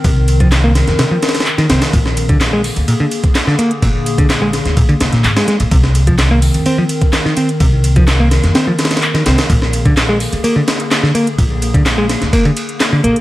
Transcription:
<<
  \new Staff \with { instrumentName = "Ambient pad" } { \time 4/4 \key bes \mixolydian \tempo 4 = 127 << { <ees bes'>1 | <d aes'>1~ | <d aes'>1 | <ees bes'>1~ |
<ees bes'>1 | <d aes'>1~ | <d aes'>1 | } \\ { c'1 | bes1~ | bes1 | c'1 |
bes1~ | bes1~ | bes1 | } >> }
  \new Staff \with { instrumentName = "Picked electric bass" } { \clef bass \time 4/4 \key bes \mixolydian c16 r8 f16 r16 bes16 r8 c16 f16 r8. ees16 c'16 r16 | bes,16 r8 d16 r16 aes16 r8 bes,16 d16 r8. d16 bes16 r16 | bes,16 r8 d16 r16 aes16 r8 bes,16 d16 r16 bes,16 r16 aes16 aes16 r16 | c16 r8 f16 r16 bes16 r8 c'16 f16 r8. ees16 c'16 r16 |
c16 r8 f16 r16 bes16 r8 c'16 f16 r8. ees16 c'16 r16 | bes,16 r8 d16 r16 aes16 r8 bes16 d16 r8. d16 bes16 r16 | bes,16 r8 d16 r16 aes16 r8 bes16 d16 r8. d16 bes16 r16 | }
  \new Staff \with { instrumentName = "Upright bass" } { \clef bass \time 4/4 \key bes \mixolydian c,4. r16 f,16 r4. c,16 r16 | bes,,4. r16 d,16 r2 | bes,,4. r16 d,16 r8 f,,16 r16 aes,,16 r8 bes,,16 | c,4. r16 f,16 r2 |
c,4. r16 f,16 r4. c,16 r16 | bes,,4. r16 d,16 r2 | bes,,4. r16 d,16 r4. bes,,16 r16 | }
  \new DrumStaff \with { instrumentName = "Drums" } \drummode { \time 4/4 <hh bd cymr>8 <hh cymr>16 <hh bd>16 <hc hh cymr sn>8 <hh cymr sn>16 <hh sn>16 <hh cymr sn>8 <hh cymr sn>32 <cymr sn>32 <hh cymr sn>32 <cymr sn>32 <hc hh>16 <cymr sn>16 <hh cymr sn>16 <hh cymr sn>16 | <hh bd cymr>16 sn16 <hh cymr>16 <hh bd>16 <hc hh cymr sn>8 <hh hho>16 <hh cymr>16 <hh cymr>8 <hh cymr>16 <hh bd>16 <hc hh cymr sn>16 sn16 <hh cymr>16 hh16 | <hh bd cymr>8 <hh cymr>16 <hh bd>16 <hc hh cymr sn>8 <hh cymr sn>16 <hh sn>16 <hh bd cymr>16 cymr16 <hh cymr sn>16 <hh sn>16 <hc hh cymr>16 <cymr sn>16 <hh sn>16 <hh cymr>16 | <hh bd cymr>16 sn16 <hh cymr>16 <hh bd>16 <hc hh cymr sn>8 <hh hho>16 <hh cymr>16 <hh cymr>8 <hh cymr>16 <hh bd>16 <hc hh cymr sn>16 sn16 <hh cymr>16 hh16 |
<hh bd cymr>8 <hh cymr>16 <hh bd>16 <hc hh cymr sn>8 <hh cymr sn>16 <hh sn>16 <hh cymr sn>8 <hh cymr sn>32 <cymr sn>32 <hh cymr sn>32 <cymr sn>32 <hc hh>16 <cymr sn>16 <hh cymr sn>16 <hh cymr sn>16 | <hh bd cymr>16 sn16 <hh cymr>16 <hh bd>16 <hc hh cymr sn>8 <hh hho>16 <hh cymr>16 <hh cymr>8 <hh cymr sn>16 hh16 <hc hh cymr sn>16 sn16 <hh cymr>16 hh16 | <hh bd cymr>8 <hh cymr>16 <hh bd>16 <hc hh cymr sn>8 <hh cymr sn>16 <hh sn>16 <hh bd cymr>16 cymr16 <hh cymr>16 hh16 <hc hh cymr sn>8 hh16 hh16 | }
>>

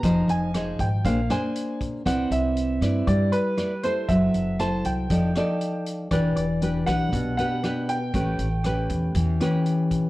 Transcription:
<<
  \new Staff \with { instrumentName = "Grand piano" } { \time 4/4 \key c \lydian \tempo 4 = 118 bes''8 aes''4 g''8 f''8 aes''4 r8 | fis''8 e''4. d''8 b'4 c''8 | e''4 a''8 g''2 r8 | d''8 d''4 fis''4 fis''4 g''8~ |
g''2.~ g''8 r8 | }
  \new Staff \with { instrumentName = "Nylon-string guitar" } { \time 4/4 \key c \lydian << { <ees' aes' c''>4 <ees' aes' c''>8 r8 <d' aes' c''>8 <d' aes' c''>4. | <e' b' d''>4. <e' b' d''>4. <e' b' d''>8 <e' a' c''>8~ | <e' a' c''>4 <e' a' c''>4 <ees' a' d''>8 <ees' a' d''>4. | <d' g' b'>8 r8 <d' g' b'>8 <d' g' b'>4 <d' g' b'>8 <d' g' b'>8 r8 |
<cis' g' b'>8 r8 <cis' g' b'>4. <cis' g' b'>4. | } \\ { f2 bes2 | c'2 g2 | fis2 f2 | e2 b,2 |
a2 e2 | } >> }
  \new Staff \with { instrumentName = "Upright bass" } { \clef bass \time 4/4 \key c \lydian f,,8 f,,4 aes,,8 bes,,8 r4. | c,8 c,4 g,8 g,8 r4. | fis,,8 fis,,4 c,8 f,,8 r4. | e,,8 e,,4 b,,8 b,,8 r4. |
a,,8 a,,4 e,8 e,8 r4. | }
  \new DrumStaff \with { instrumentName = "Drums" } \drummode { \time 4/4 <hh bd>8 hh8 <hh ss>8 <hh bd>8 <hh bd>8 <hh ss>8 hh8 <hh bd>8 | <hh bd ss>8 hh8 hh8 <hh ss>8 <hh bd>8 hh8 <hh ss>8 hh8 | <hh bd>8 hh8 <hh ss>8 hh8 <hh bd>8 <hh ss>8 hh8 hh8 | <hh bd ss>8 hh8 hh8 <hh ss>8 <hh bd>8 hh8 <hh ss>8 hh8 |
<hh bd>8 hh8 <hh ss>8 <hh bd>8 <hh bd>8 <hh ss>8 hh8 <hh bd>8 | }
>>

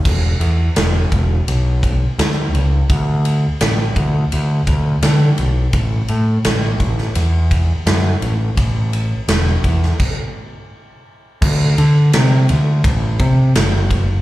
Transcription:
<<
  \new Staff \with { instrumentName = "Picked electric bass" } { \clef bass \time 4/4 \key a \mixolydian \tempo 4 = 84 e,,8 e,8 e,,8 e,,8 b,,4 d,8 cis,8 | d,4 a,,8 d,8 d,8 d,8 d8 b,,8 | a,,8 a,8 a,,8 a,,8 e,4 fis,8 a,,8 | a,,4 e,,8 e,8 r2 |
\key d \mixolydian d,8 d8 c8 d,8 a,,8 c8 fis,,4 | }
  \new DrumStaff \with { instrumentName = "Drums" } \drummode { \time 4/4 <cymc bd>8 cymr8 <cymr sn>8 <bd cymr>8 cymr8 <bd cymr>8 <cymr sn>8 cymr8 | <bd cymr>8 cymr8 <cymr sn>8 <bd cymr>8 cymr8 <bd cymr>8 <cymr sn>8 cymr8 | <bd cymr>8 cymr8 <cymr sn>8 <bd cymr>16 sn16 cymr8 <bd cymr>8 <cymr sn>8 cymr8 | <bd cymr>8 cymr8 <cymr sn>8 <bd cymr>16 sn16 <cymc bd>4 r4 |
<cymc bd>8 cymr8 <cymr sn>8 cymr8 <bd cymr>8 <bd cymr>8 <cymr sn>8 <bd cymr>8 | }
>>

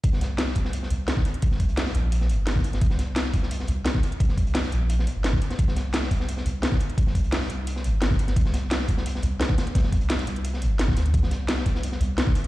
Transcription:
<<
  \new Staff \with { instrumentName = "Sub bass" } { \clef bass \time 4/4 \key g \minor \tempo 4 = 173 c,2~ c,8 c,8 r4 | c,4. bes,,4 g,,4. | c,2~ c,8 c,8 r4 | c,4. bes,,4 r16 g,,8. r8 |
c,2~ c,8 c,8 r4 | c,4. c,4 g,,4. | c,2~ c,8 c,8 r4 | c,4. c,4 g,,4 d,8 |
c,2~ c,8 c,8 r4 | }
  \new DrumStaff \with { instrumentName = "Drums" } \drummode { \time 4/4 <hh bd>16 sn16 <hh sn>8 <hh sn>16 sn16 <hh bd>16 sn16 hh16 sn16 hh8 <hh sn>16 <bd sn>16 hh16 hh16 | <hh bd>16 sn16 <hh bd>16 hh16 <hh hho sn>16 sn16 hh8 hh16 sn16 hh8 <hh sn>16 <hh bd>16 hh16 <hh sn>16 | <hh bd>16 sn16 <hh sn>8 <hh sn>16 sn16 <hh bd>16 sn16 hh16 sn16 hh8 <hh sn>16 <bd sn>16 hh16 hh16 | <hh bd>16 sn16 <hh bd>16 hh16 <hh hho sn>16 sn16 hh8 hh16 sn16 hh8 <hh sn>16 <hh bd>16 hh16 <hh sn>16 |
<hh bd>16 sn16 <hh sn>8 <hh sn>16 sn16 <hh bd>16 sn16 hh16 sn16 hh8 <hh sn>16 <bd sn>16 hh16 hh16 | <hh bd>16 sn16 <hh bd>16 hh16 <hh hho sn>16 sn16 hh8 hh16 sn16 hh8 <hh sn>16 <hh bd>16 hh16 <hh sn>16 | <hh bd>16 sn16 <hh sn>8 <hh sn>16 sn16 <hh bd>16 sn16 hh16 sn16 hh8 <hh sn>16 <bd sn>16 <hh sn>16 hh16 | <hh bd sn>16 sn16 <hh bd>16 hh16 <hh hho sn>16 <hh sn>16 hh16 hh16 hh16 sn16 hh8 <hh sn>16 <bd sn>16 <hh sn>16 hh16 |
<hh bd>16 sn16 <hh sn>8 <hh sn>16 sn16 <hh bd>16 sn16 hh16 sn16 hh8 <hh sn>16 <bd sn>16 hh16 hh16 | }
>>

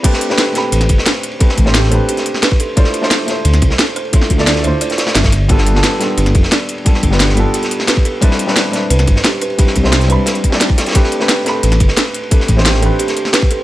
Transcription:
<<
  \new Staff \with { instrumentName = "Kalimba" } { \time 4/4 \key a \minor \tempo 4 = 176 g'8 r8 b'8 a'8 b'8 r8 c''8 r8 | a'8 r8 g'8 a'8 g'8 r8 b'8 a'8 | d''8 r8 e''8 r8 c''8 r8 a'8 c''8 | a'8 r8 d''8 c''8 d''8 r8 e''8 r8 |
g'8 r8 b'8 a'8 b'8 r8 d''8 r8 | a'8 r8 g'8 a'8 g'8 r8 b'8 a'8 | c''8 r8 d''8 r8 b'8 r8 g'8 b'8 | g'8 r8 c''8 b'8 c''8 r8 d''8 r8 |
g'8 r8 b'8 a'8 b'8 r8 c''8 r8 | a'8 r8 g'8 a'8 g'8 r8 b'8 a'8 | }
  \new Staff \with { instrumentName = "Grand piano" } { \time 4/4 \key a \minor <a c' d' g' b'>8. <a c' d' g' b'>16 r8 <a c' d' g' b''>2~ <a c' d' g' b''>8 | <a c' d' g' b'>8. <a c' d' g' c''>8. <a c' d' g' b'>2~ <a c' d' g' b'>8 | <a d' e' f' c''>8. <a d' e' f' c''>16 r8 <a d' e' f' c''>2~ <a d' e' f' c''>8 | <a d' e' f' c''>8. <a d' e' f' d''>8. <a d' e' f' c''>2 r8 |
<g b d' f' a'>8. <g b d' f' a'>16 r8 <g b d' f' a'>2~ <g b d' f' a'>8 | <g b d' f' a'>8. <g b d' f' b'>8. <g b d' f' a'>2~ <g b d' f' a'>8 | <g c' d' e' b'>8. <g c' d' e' b'>16 r8 <g c' d' e' b'>2~ <g c' d' e' b'>8 | <g c' d' e' b'>8. <g c' d' e' c''>8. <g c' d' e' b''>4~ <g c' d' e' b''>16 <g c' d' e' d''>4~ <g c' d' e' d''>16 |
<a c' d' g' b'>8. <a c' d' g' b'>16 r8 <a c' d' g' b''>2~ <a c' d' g' b''>8 | <a c' d' g' b'>8. <a c' d' g' c''>8. <a c' d' g' b'>2~ <a c' d' g' b'>8 | }
  \new Staff \with { instrumentName = "Detuned saw bass" } { \clef bass \time 4/4 \key a \minor r2 a,,8 g,,8 r4 | r8 a,,4 a,,8 r2 | r2 d,8 c,8 r4 | r8 d,4 d,8 r4 g,,4~ |
g,,4 r4 g,,8 f,,8 r4 | r8 g,,4 g,,8 r2 | r2 c,8 g,,8 r4 | r8 c,4 c,8 r2 |
r2 a,,8 g,,8 r4 | r8 a,,4 a,,8 r2 | }
  \new DrumStaff \with { instrumentName = "Drums" } \drummode { \time 4/4 <cymc hh bd cymr>16 sn16 <hh cymr>16 sn16 <hh cymr sn>8 <hh cymr sn>8 <hh cymr>16 <hh cymr sn>16 <hh bd cymr>16 sn16 <hh cymr sn>8 <hh cymr>16 cymr16 | <hh bd cymr>16 sn16 <hh bd cymr>16 sn16 <hh cymr sn>16 sn16 <hh cymr>8 <hh cymr>16 <hh sn>16 <hh cymr>16 sn16 <hh cymr sn>16 bd16 <hh cymr>8 | <hh bd cymr>16 sn16 <hh cymr>16 sn16 <hh cymr sn>8 <hh cymr sn>8 <hh cymr>16 <hh cymr sn>16 <hh bd cymr>16 sn16 <hh cymr sn>8 <hh cymr>16 cymr16 | <hh bd cymr>16 sn16 <hh bd cymr>16 sn16 <hh cymr sn>16 sn16 <hh cymr>8 <hh cymr>16 <hh sn>16 <hh cymr sn>16 <cymr sn>16 <hh cymr sn>16 <bd cymr sn>16 <hh cymr sn>8 |
<hh bd cymr>16 sn16 <hh cymr>16 sn16 <hh cymr sn>8 <hh cymr sn>8 <hh cymr>16 <hh cymr sn>16 <hh bd cymr>16 sn16 <hh cymr sn>8 <hh cymr>16 cymr16 | <hh bd cymr>16 sn16 <hh bd cymr>16 sn16 <hh cymr sn>16 sn16 <hh cymr>8 <hh cymr>16 <hh sn>16 <hh cymr>16 sn16 <hh cymr sn>16 bd16 <hh cymr>8 | <hh bd cymr>16 sn16 <hh cymr>16 sn16 <hh cymr sn>8 <hh cymr sn>8 <hh cymr>16 <hh cymr sn>16 <hh bd cymr>16 sn16 <hh cymr sn>8 <hh cymr>16 cymr16 | <hh bd cymr>16 sn16 <hh bd cymr>16 sn16 <hh cymr sn>16 <hh sn>16 <hh cymr>8 <hh cymr sn>16 hh16 <hh bd cymr>16 <cymr sn>16 <hh sn>16 <bd cymr>16 <hh cymr sn>16 <hh cymr sn>32 <cymr sn>32 |
<hh bd cymr>16 sn16 <hh cymr>16 sn16 <hh cymr sn>8 <hh cymr sn>8 <hh cymr>16 <hh cymr sn>16 <hh bd cymr>16 sn16 <hh cymr sn>8 <hh cymr>16 cymr16 | <hh bd cymr>16 sn16 <hh bd cymr>16 sn16 <hh cymr sn>16 sn16 <hh cymr>8 <hh cymr>16 <hh sn>16 <hh cymr>16 sn16 <hh cymr sn>16 bd16 <hh cymr>8 | }
>>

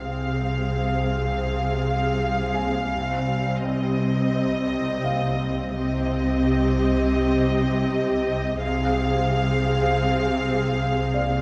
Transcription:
<<
  \new Staff \with { instrumentName = "Felt piano" } { \time 4/4 \key c \minor \tempo 4 = 84 r2. r8 aes''8~ | aes''2~ aes''8 r8 f''4~ | f''2 r2 | r2. r8 d''8 | }
  \new Staff \with { instrumentName = "Violin section" } { \time 4/4 \key c \minor f''1~ | f''4 ees''2. | ees''1 | f''1 | }
  \new Staff \with { instrumentName = "Viola section" } { \time 4/4 \key c \minor <c' aes'>1 | <g c'>1 | <c' g'>1 | <c' aes'>1 | }
  \new Staff \with { instrumentName = "Cello section" } { \clef bass \time 4/4 \key c \minor c1 | c1 | c1 | c1 | }
  \new Staff \with { instrumentName = "Double bass section" } { \clef bass \time 4/4 \key c \minor c,1 | c,1 | c,1 | c,1 | }
>>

